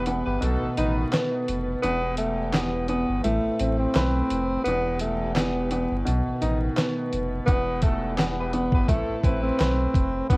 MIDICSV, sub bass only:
0, 0, Header, 1, 2, 480
1, 0, Start_track
1, 0, Key_signature, 1, "minor"
1, 0, Tempo, 705882
1, 1243, Time_signature, 4, 2, 24, 8
1, 7052, End_track
2, 0, Start_track
2, 0, Title_t, "Sub bass"
2, 0, Program_c, 0, 38
2, 0, Note_on_c, 0, 28, 115
2, 150, Note_off_c, 0, 28, 0
2, 179, Note_on_c, 0, 31, 96
2, 260, Note_off_c, 0, 31, 0
2, 286, Note_on_c, 0, 35, 108
2, 386, Note_off_c, 0, 35, 0
2, 419, Note_on_c, 0, 33, 51
2, 461, Note_off_c, 0, 33, 0
2, 527, Note_on_c, 0, 33, 93
2, 709, Note_off_c, 0, 33, 0
2, 1007, Note_on_c, 0, 29, 94
2, 1190, Note_off_c, 0, 29, 0
2, 1246, Note_on_c, 0, 28, 111
2, 2069, Note_off_c, 0, 28, 0
2, 2099, Note_on_c, 0, 31, 89
2, 2180, Note_off_c, 0, 31, 0
2, 2207, Note_on_c, 0, 33, 106
2, 2306, Note_off_c, 0, 33, 0
2, 2338, Note_on_c, 0, 33, 50
2, 2381, Note_off_c, 0, 33, 0
2, 2446, Note_on_c, 0, 33, 97
2, 2629, Note_off_c, 0, 33, 0
2, 2687, Note_on_c, 0, 35, 103
2, 2870, Note_off_c, 0, 35, 0
2, 2926, Note_on_c, 0, 29, 95
2, 3109, Note_off_c, 0, 29, 0
2, 3166, Note_on_c, 0, 28, 114
2, 3989, Note_off_c, 0, 28, 0
2, 4019, Note_on_c, 0, 31, 98
2, 4100, Note_off_c, 0, 31, 0
2, 4128, Note_on_c, 0, 35, 105
2, 4227, Note_off_c, 0, 35, 0
2, 4259, Note_on_c, 0, 33, 50
2, 4301, Note_off_c, 0, 33, 0
2, 4367, Note_on_c, 0, 33, 93
2, 4550, Note_off_c, 0, 33, 0
2, 4847, Note_on_c, 0, 29, 92
2, 5030, Note_off_c, 0, 29, 0
2, 5085, Note_on_c, 0, 28, 109
2, 5908, Note_off_c, 0, 28, 0
2, 5932, Note_on_c, 0, 31, 88
2, 6016, Note_off_c, 0, 31, 0
2, 6043, Note_on_c, 0, 33, 110
2, 6144, Note_off_c, 0, 33, 0
2, 6180, Note_on_c, 0, 33, 49
2, 6222, Note_off_c, 0, 33, 0
2, 6282, Note_on_c, 0, 33, 95
2, 6466, Note_off_c, 0, 33, 0
2, 6526, Note_on_c, 0, 35, 97
2, 6709, Note_off_c, 0, 35, 0
2, 6763, Note_on_c, 0, 29, 92
2, 6947, Note_off_c, 0, 29, 0
2, 7006, Note_on_c, 0, 28, 116
2, 7052, Note_off_c, 0, 28, 0
2, 7052, End_track
0, 0, End_of_file